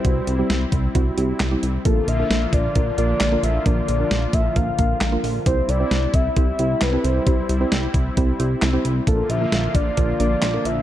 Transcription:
<<
  \new Staff \with { instrumentName = "Soft synth lead" } { \time 4/4 \key c \lydian \tempo 4 = 133 c''4 r2. | a'8 e''4 d''4 d''4 e''8 | d''8 d''4 e''8 f''4. r8 | c''8 d''4 e''8 e''4 b'8 c''8~ |
c''4 r2. | a'8 e''4 d''4 d''4 e''8 | }
  \new Staff \with { instrumentName = "Synth pluck" } { \time 4/4 \key c \lydian <g c' e' fis'>8 r16 <g c' e' g'>4 r16 <g c' e' fis'>8 <g c' e' g'>8 r16 <g c' e' g'>8 r16 | <bes d' f' bes'>8 r16 <bes d' f' bes'>4 r16 <bes d' f' bes'>8 <bes d' f' bes'>8 r16 <bes d' f' bes'>8 r16 | <bes d' f' bes'>8 r16 <bes d' f' bes'>4 r16 <bes d' f' bes'>8 <bes d' f' bes'>8 r16 <bes d' f' bes'>8 r16 | <c' e' g' c''>8 r16 <c' e' g' c''>4 r16 <c' e' g' c''>8 <c' e' g' c''>8 r16 <c' e' g' a'>8 r16 |
<c' e' g' c''>8 r16 <c' e' g' c''>4 r16 <c' e' g' c''>8 <c' e' g' c''>8 r16 <c' e' g' c''>8 r16 | <bes d' f' bes'>8 r16 <bes d' f' bes'>4 r16 <bes d' f' bes'>8 <bes d' f' bes'>8 r16 <bes d' f' bes'>8 r16 | }
  \new Staff \with { instrumentName = "Analog synth pad" } { \time 4/4 \key c \lydian <g c' e'>1 | <d f bes f'>1~ | <d f bes f'>1 | <g c'>1~ |
<g c'>1 | r1 | }
  \new Staff \with { instrumentName = "Analog synth bass" } { \clef bass \time 4/4 \key c \lydian c,8 c,8 c,8 c,8 c,8 c,8 c,8 c,8 | bes,,8 bes,,8 bes,,8 bes,,8 bes,,8 bes,,8 bes,,8 bes,,8 | bes,,8 bes,,8 bes,,8 bes,,8 bes,,8 bes,,8 bes,,8 bes,,8 | c,8 c,8 c,8 c,8 c,8 c,8 c,8 c,8 |
c,8 c,8 c,8 c,8 c,8 c,8 c,8 c,8 | bes,,8 bes,,8 bes,,8 bes,,8 bes,,8 bes,,8 bes,,8 bes,,8 | }
  \new DrumStaff \with { instrumentName = "Drums" } \drummode { \time 4/4 <hh bd>8 hh8 <hh sn>8 <hh bd>8 <hh bd>8 hh8 <hc hh sn>8 hh8 | <hh bd>8 hh8 <hh sn>8 <hh bd>8 <hh bd>8 hh8 <hc hh sn>8 hh8 | <hh bd>8 hh8 <hh sn>8 <hh bd>8 <hh bd>8 <hh bd>8 <hc hh sn>8 hho8 | <hh bd>8 hh8 <hh sn>8 <hh bd>8 <hh bd>8 hh8 <hc hh sn>8 hh8 |
<hh bd>8 hh8 <hh sn>8 <hh bd>8 <hh bd>8 hh8 <hc hh sn>8 hh8 | <hh bd>8 hh8 <hh sn>8 <hh bd>8 <hh bd>8 hh8 <hc hh sn>8 hh8 | }
>>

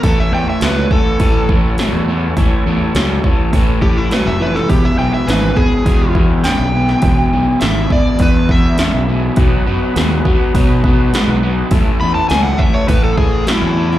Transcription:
<<
  \new Staff \with { instrumentName = "Electric slide guitar" } { \time 4/4 \key e \major \tempo 4 = 103 a'16 e''16 g''16 e''16 b'8 a'4 r4. | r2 r8 g'16 e'16 b'16 e''16 b'16 a'16 | g'16 e''16 g''16 e''16 b'8 gis'4 r8 g''4~ | g''4 e''8 d''8 b'8 e''4. |
r1 | r8 b''16 a''16 gis''16 fis''16 e''16 cis''16 b'16 a'16 gis'8 e'4 | }
  \new Staff \with { instrumentName = "Tonewheel organ" } { \time 4/4 \key e \major <cis' e' a' cis''>1 | <cis' e' a' cis''>1 | <b e' gis' b'>1 | <b e' gis'>1 |
<b dis' fis' b'>1 | <a cis' e' a'>1 | }
  \new Staff \with { instrumentName = "Overdriven electric guitar" } { \clef bass \time 4/4 \key e \major <a, e>8 <a, e>8 <a, fis>8 <a, e>8 <a, e>8 <a, e>8 <a, fis>8 <a, e>8 | <a, e>8 <a, e>8 <a, fis>8 <a, e>8 <a, e>8 <a, e>8 <a, fis>8 <a, e>8 | <e, b,>8 <e, b,>8 <e, cis>8 <e, b,>8 <e, b,>8 <e, b,>8 <e, cis>8 <e, b,>8 | <e, b,>8 <e, b,>8 <e, cis>8 <e, b,>8 <e, b,>8 <e, b,>8 <e, cis>8 <e, b,>8 |
<b, fis>8 <b, fis>8 <b, gis>8 <b, fis>8 <b, fis>8 <b, fis>8 <b, gis>8 <b, fis>8 | <a, e>8 <a, e>8 <a, fis>8 <a, e>8 <a, e>8 <a, e>8 <a, fis>8 <a, e>8 | }
  \new Staff \with { instrumentName = "Fingered electric bass" } { \clef bass \time 4/4 \key e \major a,,16 r16 e,16 r16 cis,8 r8 a,4~ a,16 e,8. | a,,16 r16 e,16 r16 cis,8 r8 a,4~ a,16 f,,8. | e,,16 r16 b,,16 r16 gis,,8 r8 e,4~ e,16 b,,8. | e,,16 r16 b,,16 r16 gis,,8 r8 e,4~ e,16 b,,8. |
b,,16 r16 fis,16 r16 dis,8 r8 b,4~ b,16 b,,8. | a,,16 r16 e,16 r16 cis,8 r8 a,4~ a,16 e,8. | }
  \new DrumStaff \with { instrumentName = "Drums" } \drummode { \time 4/4 <hho bd>4 <hho sn>8 bd8 <hho bd>8 bd8 <hho sn>4 | <hho bd>4 <hho sn>8 bd8 <hho bd>8 bd8 <hho sn>8. sn16 | <hho bd>4 <hho sn>8 bd8 <hho bd>8 bd8 <hho sn>8. sn16 | <hho bd>4 <hho sn>8 bd8 <hho bd>8 bd8 <hho sn>4 |
<hho bd>4 <hho sn>8 bd8 <hho bd>8 bd8 <hho sn>4 | <hho bd>4 <hho sn>8 bd8 <hho bd>8 bd8 <hho sn>8. sn16 | }
>>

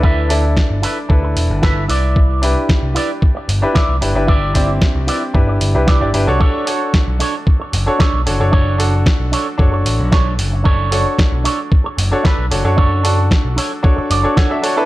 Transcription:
<<
  \new Staff \with { instrumentName = "Clean electric guitar" } { \time 4/4 \key b \minor \tempo 4 = 113 <e' a' b'>8. r8. <e' a' b'>16 r4 r16 <e' a' b'>8 <e' b' d''>8~ | <e' b' d''>4 r8 <e' b' d''>16 r4 r16 <e' b' d''>8 r8 | <e' b' d''>8. r8. <e' b' d''>16 r4 r16 <e' b' d''>8 r8 | <d' a' cis''>8. r8. <d' a' cis''>16 r4 r16 <d' a' cis''>8 r8 |
<d' a' cis''>8. r8. <d' a' cis''>16 r4 r16 <d' a' cis''>8 r8 | <d' a' cis''>8. r8. <d' a' cis''>16 r4 r16 <d' a' b'>8 r8 | <d' a' cis''>8. r8. <d' a' cis''>16 r8. d''8 <d' a' cis'' fis''>8 a''8 | }
  \new Staff \with { instrumentName = "Grand piano" } { \time 4/4 \key b \minor <d' e' a' b'>8 <d' e' a' d''>4. <d' e' a' b'>4. r8 | r8 <d' e' g' b'>2~ <d' e' g' b'>16 <d' e' g' b'>16 r8 <d' e' g' b'>16 <d' e' g' b'>16~ | <d' e' g' b'>8 <c' d' e' g'>4. <d' e' g' b'>8. <d' e' g' b'>8 <d' e' g' d''>16 <d' e' g' b'>16 <d' fis' a' cis''>16~ | <d' fis' a' cis''>8 <d' fis' a' cis''>2~ <d' fis' a' cis''>16 <d' fis' a' cis''>16 r8 <d' fis' a' cis''>16 <d' fis' a' cis''>16~ |
<d' fis' a' cis''>8 <d' fis' a'>4. <d' fis' a' cis''>2~ | <d' fis' a' cis''>8 <d' fis' a' cis''>2~ <d' fis' a' cis''>16 <d' fis' a' cis''>16 r8 <d' fis' a' cis''>16 <d' fis' a' cis''>16~ | <d' fis' a' cis''>8 <d' fis' a'>4. <d' fis' a' cis''>8. <d' fis' a' cis''>8 <d' fis' a' e''>16 <d' fis' a' cis''>16 <d' e' a' b'>16 | }
  \new Staff \with { instrumentName = "Picked electric bass" } { \clef bass \time 4/4 \key b \minor d,4 r16 g,,16 r8 d,8 e,,16 g,,8. c,8~ | c,8. r8 c,16 r4 g,,16 r8 c,16 g,,16 g,,16~ | g,,4 r16 c,16 r8 g,,8 g,,16 c,8 g,,16 g,,16 c,16 | r4 r16 b,,16 r4 fis,,16 r8 b,,16 fis,,16 fis,,16~ |
fis,,4 r16 b,,16 r8 fis,,8 a,,16 b,,8. fis,,8~ | fis,,8. r8 b,,16 r4 fis,,16 r8 b,,16 fis,,16 fis,,16~ | fis,,4 r16 b,,16 r4 fis,,16 r4 r16 | }
  \new DrumStaff \with { instrumentName = "Drums" } \drummode { \time 4/4 bd8 hho8 <bd sn>8 hho8 bd8 hho8 <bd sn>8 hho8 | bd8 hho8 <bd sn>8 hho8 bd8 hho8 <bd sn>8 hho8 | bd8 <hho bd>8 <bd sn>8 hho8 bd8 hho8 <bd sn>8 hho8 | bd8 hho8 <bd sn>8 hho8 bd8 hho8 <bd sn>8 hho8 |
bd8 hho8 <bd sn>8 hho8 bd8 hho8 <bd sn>8 hho8 | bd8 hho8 <bd sn>8 hho8 bd8 hho8 <bd sn>8 hho8 | bd8 hho8 <bd sn>8 hho8 bd8 hho8 <bd sn>8 hho8 | }
>>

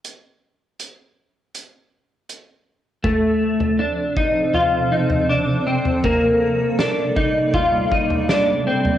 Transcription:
<<
  \new Staff \with { instrumentName = "Clean electric guitar" } { \time 4/4 \key f \mixolydian \tempo 4 = 80 r1 | a4 d'8 ees'8 f'8 ees'8 d'8 c'8 | bes4 d'8 ees'8 f'8 ees'8 d'8 c'8 | }
  \new Staff \with { instrumentName = "Ambient pad" } { \time 4/4 \key f \mixolydian << { r1 | <c f c' c''>1 | <c g bes d''>1 | } \\ { r1 | a'1~ | a'1 | } >> }
  \new DrumStaff \with { instrumentName = "Drums" } \drummode { \time 4/4 hh4 hh4 hh4 hh4 | <bd tomfh>8. tomfh16 r8 bd8 tomfh8. tomfh16 r8. tomfh16 | <bd tomfh>4 sn8 bd8 <bd tomfh>8 bd16 tomfh16 sn8. tomfh16 | }
>>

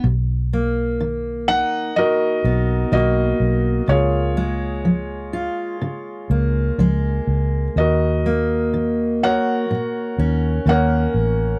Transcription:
<<
  \new Staff \with { instrumentName = "Felt piano" } { \time 4/4 \key ees \minor \tempo 4 = 62 r4. fis''8 <fis' ais' dis''>4 <fis' ais' dis''>4 | <f' aes' des''>2. r4 | <ges' bes' ees''>4. <bes' des'' ges''>4. <bes' des'' ges''>4 | }
  \new Staff \with { instrumentName = "Steel-string acoustic guitar" } { \clef bass \time 4/4 \key ees \minor << { r8 ais4 dis'4 b8 ais4 | r8 aes4 f'4 bes8 aes4 | r8 bes4 ges'4 des'8 bes4 | } \\ { b,4 dis4 fis,4 dis4 | des4 f4 des4 f4 | ees,4 ees4 bes,4 ees4 | } >> }
  \new Staff \with { instrumentName = "Fingered electric bass" } { \clef bass \time 4/4 \key ees \minor b,,2 r8 b,,8 b,,8 b,,8 | des,2 r8 des,8 des,8 des,8 | ees,2 r8 ees,8 ees,8 a,,8 | }
>>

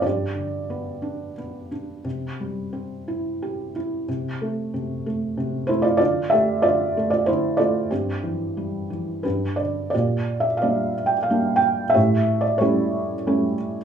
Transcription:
<<
  \new Staff \with { instrumentName = "Felt piano" } { \time 3/4 \key c \major \tempo 4 = 91 << { d''2 r4 | r2. | r2 r8 c''16 d''16 | d''8 e''8 d''8. d''16 c''8 d''8 |
g'2 b'8 d''8 | d''8. e''16 f''8. g''16 f''8 g''8 | e''8. d''16 cis''4. r8 | } \\ { g'2 r4 | r2. | r2 r8 e'16 f'16 | f'8 g'8 f'8. f'16 e'8 f'8 |
c'2 <d' g'>4 | <f' g'>4 d''4. r8 | <g' cis''>4 <e' g'>4. r8 | } >> }
  \new Staff \with { instrumentName = "Felt piano" } { \clef bass \time 3/4 \key c \major g,8 d8 b8 d'8 b8 d'8 | c8 g8 c'8 e'8 g'8 e'8 | c8 a8 c8 a8 c8 a8 | d8 a8 d8 a8 d8 a8 |
g,8 e8 g8 e8 g,8 d8 | bes,4 <g bes d'>4 <g bes d'>4 | a,4 <g a cis'>4 <g a cis'>4 | }
>>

